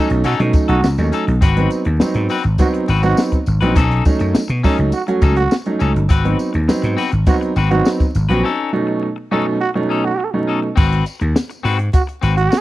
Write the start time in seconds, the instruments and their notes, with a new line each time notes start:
Already playing: upright piano F#3 A3 C#4 D#4
0.10 slap bass B1, muted clean electric guitar stroke, closed hi-hat
0.24 slap bass B2, clean electric guitar C#4 D#4 A4, trombone F#4, closed hi-hat, tambourine
0.39 slap bass B2, upright piano F#3 A3 C#4 D#4, snare, closed hi-hat
0.53 muted clean electric guitar stroke, kick, closed hi-hat, tambourine
0.68 slap bass B1, clean electric guitar C#4 D#4 A4, trombone F#4, snare, closed hi-hat
0.83 slap bass C#2, muted clean electric guitar stroke, snare, tambourine
0.98 slap bass D#2, upright piano F#3 A3 C#4 D#4, closed hi-hat, tambourine
1.12 clean electric guitar C#4 D#4 A4, closed hi-hat, tambourine
1.28 slap bass B1, closed hi-hat
1.41 slap bass G#1, clean electric guitar C4 F#4 B4, kick, closed hi-hat, tambourine
1.57 upright piano F#3 B3 C4 D#4, closed hi-hat
1.71 closed hi-hat, tambourine
1.85 slap bass D#2, muted clean electric guitar stroke, closed hi-hat
2.00 upright piano F#3 B3 C4 D#4, muted clean electric guitar stroke, muted slap bass stroke, snare, tambourine
2.14 slap bass G#2, muted clean electric guitar stroke, closed hi-hat
2.29 clean electric guitar C4 F#4 B4, open hi-hat, tambourine
2.44 slap bass G#1, muted clean electric guitar stroke, closed hi-hat
2.58 upright piano F#3 B3 C4 D#4, trombone F#4, kick, closed hi-hat, tambourine
2.74 muted clean electric guitar stroke, closed hi-hat
2.88 slap bass G#1, clean electric guitar C4 F#4 B4, closed hi-hat, tambourine
3.03 upright piano F#3 B3 C4 D#4, trombone F#4, muted clean electric guitar stroke, closed hi-hat, tambourine
3.17 muted clean electric guitar stroke, snare, tambourine
3.32 muted clean electric guitar stroke, kick, closed hi-hat
3.46 slap bass G#1, closed hi-hat, tambourine
3.61 slap bass A#1, upright piano F#3 B3 C4 D#4, clean electric guitar C4 F#4 B4, closed hi-hat
3.75 slap bass B1, clean electric guitar C#4 D#4 A4, kick, closed hi-hat, tambourine
3.91 closed hi-hat
4.05 upright piano F#3 A3 C#4 D#4, kick, closed hi-hat, tambourine
4.19 slap bass F#2, muted clean electric guitar stroke, closed hi-hat, tambourine
4.34 muted clean electric guitar stroke, muted slap bass stroke, snare, tambourine
4.48 slap bass B2, muted clean electric guitar stroke, closed hi-hat, tambourine
4.63 upright piano F#3 A3 C#4 D#4, clean electric guitar C#4 D#4 A4, kick, open hi-hat, tambourine
4.78 slap bass C#2, muted clean electric guitar stroke, closed hi-hat
4.92 trombone F#4, closed hi-hat, tambourine
5.07 upright piano F#3 A3 C#4 F#4, muted clean electric guitar stroke, closed hi-hat
5.22 slap bass C#2, clean electric guitar C#4 D#4 A4, kick, closed hi-hat, tambourine
5.36 trombone F#4, muted clean electric guitar stroke, closed hi-hat
5.51 muted clean electric guitar stroke, snare, tambourine
5.66 upright piano F#3 A3 C#4 D#4, closed hi-hat
5.79 slap bass C#2, clean electric guitar C#4 D#4 A4, closed hi-hat, tambourine
5.94 slap bass G1, muted clean electric guitar stroke, closed hi-hat
6.09 slap bass G#1, clean electric guitar C4 F#4 B4, kick, closed hi-hat, tambourine
6.25 upright piano F#3 B3 C4 D#4, closed hi-hat
6.39 closed hi-hat, tambourine
6.53 slap bass D#2, muted clean electric guitar stroke, closed hi-hat
6.68 upright piano F#3 B3 C4 D#4, muted clean electric guitar stroke, muted slap bass stroke, snare, tambourine
6.82 slap bass G#2, muted clean electric guitar stroke, closed hi-hat
6.97 clean electric guitar C4 F#4 B4, open hi-hat, tambourine
7.12 slap bass G#1, muted clean electric guitar stroke, closed hi-hat
7.26 upright piano F#3 B3 C4 D#4, trombone F#4, kick, closed hi-hat, tambourine
7.41 muted clean electric guitar stroke, closed hi-hat
7.56 slap bass G#1, clean electric guitar C4 F#4 B4, closed hi-hat, tambourine
7.70 upright piano F#3 B3 C4 D#4, trombone F#4, muted clean electric guitar stroke, closed hi-hat
7.85 muted clean electric guitar stroke, snare, tambourine
8.00 muted clean electric guitar stroke, kick, closed hi-hat, tambourine
8.15 slap bass G#1, closed hi-hat, tambourine
8.29 slap bass A#1, upright piano F#3 B3 C4 F#4, clean electric guitar C4 F#4 B4, closed hi-hat
8.43 clean electric guitar C#4 D#4 A4
8.73 upright piano B2 F#3 A3 C#4 D#4
8.87 muted clean electric guitar stroke
9.02 muted clean electric guitar stroke
9.16 muted clean electric guitar stroke
9.31 upright piano B2 F#3 A3 C#4 D#4, clean electric guitar C#4 D#4 A4
9.46 muted clean electric guitar stroke
9.61 trombone F#4
9.74 upright piano B2 F#3 A3 C#4 D#4, muted clean electric guitar stroke
9.89 clean electric guitar C#4 D#4 A4
10.04 trombone F#4, muted clean electric guitar stroke
10.19 muted clean electric guitar stroke
10.33 upright piano B2 F#3 A3 C#4 D#4
10.47 clean electric guitar C#4 D#4 A4
10.62 muted clean electric guitar stroke
10.76 slap bass G#1, clean electric guitar C4 F#4 B4, kick, crash, tambourine
10.93 closed hi-hat
11.06 closed hi-hat, tambourine
11.20 slap bass D#2, muted clean electric guitar stroke, closed hi-hat
11.35 muted clean electric guitar stroke, snare, tambourine
11.50 muted clean electric guitar stroke, closed hi-hat, tambourine
11.63 slap bass G#2, clean electric guitar C4 F#4 B4, open hi-hat, tambourine
11.79 muted clean electric guitar stroke, closed hi-hat
11.93 trombone F#4, kick, closed hi-hat, tambourine
12.07 muted clean electric guitar stroke, closed hi-hat
12.21 slap bass G#1, clean electric guitar C4 F#4 B4, closed hi-hat, tambourine
12.36 trombone F#4, muted clean electric guitar stroke, closed hi-hat
12.50 muted clean electric guitar stroke, snare, tambourine